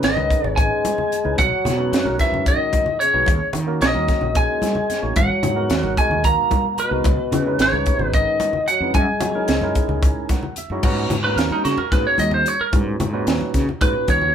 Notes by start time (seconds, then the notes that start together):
Already playing: G#3 C#4 E4 B4
0.03 G#1 D#5, snare, closed hi-hat, low conga
0.07 D#3
0.17 C#2 G#3 C#4 D#4 G#4 B4, high conga
0.30 kick, closed hi-hat
0.44 G#1 C#5, low conga
0.56 G#5, kick, closed hi-hat
0.61 G#3
0.85 closed hi-hat, high conga
0.98 low conga
1.11 closed hi-hat, low conga
1.24 C#2 G#3 C#4 D#4 E4 B4, low conga
1.38 B1 F#3 F#5, kick, closed hi-hat, high conga
1.52 low conga
1.65 B2, snare, closed hi-hat, low conga
1.78 G#3 C#4 D#4 F#4 B4
1.92 F#2, snare, closed hi-hat, low conga
2.04 B1 G#3 C#4 D#4 F#4 A#4, high conga, low conga
2.19 E3 E5, kick, snare, closed hi-hat
2.32 F#2, low conga
2.46 D#3 D#5, kick, closed hi-hat, low conga
2.73 kick, closed hi-hat, high conga
2.86 low conga
3.00 C#3 C#5, closed hi-hat
3.13 B1 G#3 C#4 D#4 F#4 B4, low conga
3.26 D#2, kick, closed hi-hat, high conga
3.53 D#3, closed hi-hat, low conga
3.67 A#3 C#4 D#4 F#4 A#4
3.81 A#1 D#3 D#5, snare, closed hi-hat, low conga
3.94 D#2 A#3 C#4 D#4 F#4 A#4, high conga
4.08 kick, snare, closed hi-hat
4.21 A#1, low conga
4.35 G#3 G#5, kick, closed hi-hat
4.62 snare, closed hi-hat, high conga
4.75 low conga
4.90 snare, closed hi-hat, low conga
5.02 A1 A#3 C#4 D#4 F#4 C#5, low conga
5.16 G#1 F#3 F#5, kick, closed hi-hat, high conga
5.43 G#2, closed hi-hat, low conga
5.55 G#3 B3 D#4 F#4 A#4
5.69 D#2, snare, closed hi-hat, low conga
5.82 G#1 B2 G#3 D#4 F#4 A#4, high conga
5.97 G#3 G#5, kick, closed hi-hat
6.10 D#2, low conga
6.24 A#3 A#5, kick, closed hi-hat
6.51 kick, closed hi-hat, high conga
6.77 B2 B4, closed hi-hat, low conga
6.90 C2 G#3 B3 D#4 F#4 A#4
7.04 C#2, kick, closed hi-hat, high conga
7.32 C#3, closed hi-hat, low conga
7.46 G#3 C#4 D#4 E4 B4
7.59 G#1 C#3 C#5, snare, closed hi-hat, low conga
7.72 C#2 G#3 C#4 D#4 G#4 B4, high conga
7.86 kick, closed hi-hat
7.99 G#1, low conga
8.13 D#3 D#5, kick, closed hi-hat
8.40 closed hi-hat, high conga
8.53 low conga
8.67 F#3 F#5, closed hi-hat, low conga
8.80 F2 G#3 C#4 D#4 E4 B4, low conga
8.94 F#2 G#3 G#5, kick, closed hi-hat, high conga
9.21 F#3, closed hi-hat, low conga
9.35 G#3 C#4 D#4 E4 A#4, low conga
9.48 C#2, snare, closed hi-hat
9.61 F#2 G#3 C#4 D#4 E4 A#4, high conga
9.75 kick, closed hi-hat
9.88 C#2, low conga
10.03 kick, closed hi-hat
10.16 low conga
10.29 F#5, kick, snare, closed hi-hat, high conga
10.43 low conga
10.56 E5, closed hi-hat, low conga
10.70 F#2 G#3 C#4 D#4 E4 F#4, low conga
10.83 G#2 A#2 C#4 D#4 F#4 B4, kick, crash, high conga
11.10 G#2, closed hi-hat, low conga
11.24 A#3 C#4 D#4 F#4 A#4 B4
11.36 D#2 A#4, snare, closed hi-hat, low conga
11.50 D#4, muted fretless electric bass stroke, high conga
11.65 C#3 F#4, snare, closed hi-hat
11.78 A#4, low conga
11.92 G#2 A#3 C#4 D#4 F#4 G#4 B4, kick, snare, closed hi-hat
12.07 C#5
12.18 D#2 D#5, closed hi-hat, high conga, low conga
12.31 C5, low conga
12.46 C#5, closed hi-hat
12.60 A#4, muted fretless electric bass stroke
12.72 G#2 A#2 C#4 D#4 F#4 B4, kick, closed hi-hat, high conga
13.00 G#2, closed hi-hat, low conga
13.13 A#2 C#4 D#4 F#4 B4
13.27 D#2, snare, closed hi-hat
13.41 muted fretless electric bass stroke, high conga
13.54 C#3, kick, snare, closed hi-hat
13.69 low conga
13.81 G#2 A#2 C#4 D#4 F#4 B4, kick, closed hi-hat
14.08 D#2 C#5, kick, closed hi-hat, high conga, low conga
14.22 low conga